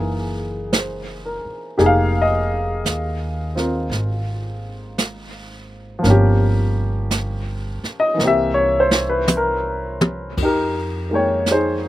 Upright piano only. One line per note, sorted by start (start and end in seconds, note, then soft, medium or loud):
0.00 1.79 E3 soft
0.00 1.77 A#3 soft
0.00 1.77 D#4 soft
0.00 1.77 G#4 soft
0.73 1.58 C5 soft
1.26 2.02 A#4 soft
1.78 6.01 A#3 soft
1.78 6.04 D#4 soft
1.78 6.04 G4 medium
1.78 6.04 G#4 medium
1.86 2.17 F5 medium
2.22 3.20 D#5 medium
3.55 6.04 C4 soft
3.55 6.05 F4 soft
3.55 6.05 A#4 soft
5.99 8.17 F3 medium
5.99 8.16 A#3 soft
6.06 8.21 C#4 medium
6.06 8.23 G4 medium
8.00 8.18 D#5 medium
8.14 10.35 E3 soft
8.14 10.37 A#3 soft
8.21 10.39 C4 soft
8.26 10.41 G4 medium
8.26 8.60 E5 medium
8.54 8.92 C#5 medium
8.80 9.04 C5 medium
9.10 9.27 B4 medium
9.37 9.79 A#4 medium
10.43 11.50 D#4 medium
10.43 11.88 G4 medium
10.43 11.17 A#4 medium
11.09 11.88 D#3 soft
11.09 11.88 G#3 soft
11.09 11.88 A#3 soft
11.14 11.49 C#5 medium
11.14 11.88 G5 soft
11.51 11.88 D#4 medium
11.51 11.88 G#4 medium
11.51 11.88 C5 medium